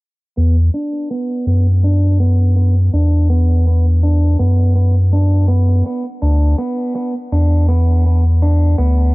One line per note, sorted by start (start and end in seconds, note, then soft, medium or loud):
0.37 0.70 E2 medium
0.37 0.55 B3 medium
0.74 1.09 D4 medium
1.11 1.45 B3 medium
1.47 2.90 F#2 medium
1.47 1.65 B3 medium
1.84 2.19 D4 medium
2.20 2.55 B3 medium
2.56 2.75 B3 medium
2.93 4.36 E2 medium
2.93 3.28 D4 medium
3.30 3.65 B3 medium
3.67 3.85 B3 medium
4.03 4.38 D4 medium
4.39 5.83 F#2 medium
4.39 4.74 B3 medium
4.76 4.94 B3 medium
5.13 5.48 D4 medium
5.48 5.84 B3 medium
5.86 6.04 B3 medium
6.22 6.55 D2 medium
6.22 6.57 D4 medium
6.58 6.94 B3 medium
6.95 7.14 B3 medium
7.32 8.75 E2 medium
7.32 7.67 D4 medium
7.69 8.04 B3 medium
8.06 8.24 B3 medium
8.42 8.77 D4 medium
8.78 9.15 D2 medium
8.78 9.13 B3 medium